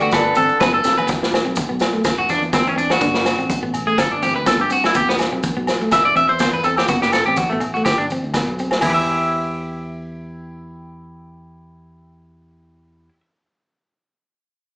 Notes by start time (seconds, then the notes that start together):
Already playing: B3 F#4 D5
0.01 A3 F#4, maracas
0.11 G1 D3 D4 A4 B4, kick, snare, low agogo, maracas
0.35 G1 C4 A4, muted conga, high conga, maracas
0.49 maracas
0.60 F#1 B3 B4, kick, snare, high conga, low conga, low agogo, maracas
0.74 A4
0.84 E1 C4, snare, maracas
0.97 B4, floor tom, low agogo, maracas
1.07 E1, muted clean electric guitar stroke, kick, snare, muted conga, maracas
1.23 snare
1.34 snare, low agogo
1.45 B1 C4, maracas
1.56 kick, muted conga, high conga, maracas
1.69 B1 B3
1.80 snare, low agogo, maracas
1.93 A3, maracas
2.04 E1, kick, snare, low agogo, maracas
2.17 E1 F#4
2.29 D4, snare, muted conga, high conga, maracas
2.42 E2, maracas
2.53 B3 C4, kick, snare, high conga, low agogo, maracas
2.65 E2 C#4, maracas
2.76 C4 D4, maracas
2.90 F#4, snare, low agogo
3.01 F#1 D4, kick, muted conga, maracas
3.14 snare
3.25 snare, low agogo, maracas
3.38 A1 C4, maracas
3.50 kick, muted conga, high conga, maracas
3.62 A1 B3
3.74 low conga, low agogo, maracas
3.87 A3 G#4
3.98 G1 A4, kick, snare, low agogo, maracas
4.11 G1 D4
4.22 C4 G4, snare, high conga, maracas
4.36 D2 B4, maracas
4.46 B3 A4, kick, snare, high conga, low agogo, maracas
4.59 G2 G4
4.70 C4 F#4, maracas
4.84 E4, snare, low agogo
4.94 E1 B3 G4, kick, maracas
5.09 B3, snare
5.18 snare, low agogo, maracas
5.32 B1 C4
5.43 kick, muted conga, high conga, maracas
5.57 B1 B3
5.67 snare, low agogo, maracas
5.81 A3, maracas
5.92 E1 E5, kick, snare, muted conga, low agogo, maracas
6.05 E1 D5
6.16 C4 E5, muted conga, high conga, maracas
6.28 E2 C5, maracas
6.39 B3 C5, kick, snare, high conga, low agogo, maracas
6.52 E2 B4, maracas
6.64 C4 A4, maracas
6.77 G4, snare, low agogo
6.88 F#1 B3 F#4, kick, muted conga, maracas
7.02 G4, snare
7.12 A4, snare, low agogo, maracas
7.25 A1 C4 G4
7.36 F#4, kick, muted conga, high conga, maracas
7.50 A1 A3 B3, maracas
7.60 muted clean electric guitar stroke, low conga, low agogo, maracas
7.74 A3 F#4, maracas
7.85 G1 G4, kick, snare, low agogo, maracas
7.98 G1 D4
8.10 C4, muted conga, high conga, maracas
8.23 D2, maracas
8.34 B3, kick, snare, high conga, low agogo, maracas
8.47 B1, maracas
8.59 C4, maracas
8.71 snare, low agogo, maracas
8.81 E2 E3 E4, kick, floor tom, open hi-hat, muted conga, low agogo, maracas
8.86 G4 B4
8.94 E5